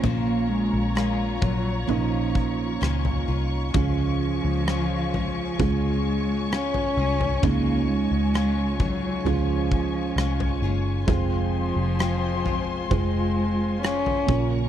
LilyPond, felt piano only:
<<
  \new Staff \with { instrumentName = "Felt piano" } { \time 4/4 \key des \major \tempo 4 = 65 <bes des' f'>4. r8 <bes des' ees'>2 | <aes des' f'>2 <aes des' f'>2 | <aes des' ees'>2 <aes des' f'>2 | <aes c' f'>2 <aes f' c''>4. <des bes f'>8 | }
  \new Staff \with { instrumentName = "Felt piano" } { \clef bass \time 4/4 \key des \major bes,4 r2. | des4. r2 r8 | des4. r2 r8 | r2. r8 bes,8 | }
>>